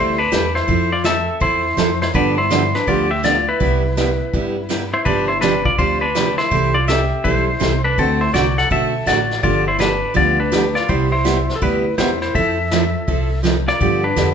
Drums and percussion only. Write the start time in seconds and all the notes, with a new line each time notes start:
0.32 snare, hi-hat pedal
0.56 snare
0.68 brush sweep, kick
1.04 snare, hi-hat pedal
1.41 brush sweep, kick
1.78 snare, hi-hat pedal
2.02 snare
2.14 brush sweep, kick
2.51 snare, hi-hat pedal
2.74 snare
2.87 brush sweep, kick
3.24 snare, hi-hat pedal
3.61 brush sweep, kick
3.97 snare, hi-hat pedal
4.34 brush sweep, kick
4.70 snare, hi-hat pedal
5.06 brush sweep, kick
5.41 snare, hi-hat pedal
5.65 kick
5.78 brush sweep, kick
6.15 snare, hi-hat pedal
6.38 snare
6.51 brush sweep, kick
6.89 snare, hi-hat pedal
7.25 brush sweep, kick
7.62 snare, hi-hat pedal
7.98 brush sweep, kick
8.35 snare, hi-hat pedal
8.58 snare
8.71 brush sweep, kick
9.08 snare, hi-hat pedal
9.31 snare
9.44 brush sweep, kick
9.80 snare, hi-hat pedal
10.16 brush sweep, kick
10.52 snare, hi-hat pedal
10.76 snare
10.89 brush sweep, kick
11.26 snare, hi-hat pedal
11.49 snare
11.62 brush sweep, kick
11.98 snare, hi-hat pedal
12.22 snare
12.35 brush sweep, kick
12.71 snare, hi-hat pedal
13.08 brush sweep, kick
13.45 snare, hi-hat pedal
13.68 snare
13.81 brush sweep, kick
14.17 snare, hi-hat pedal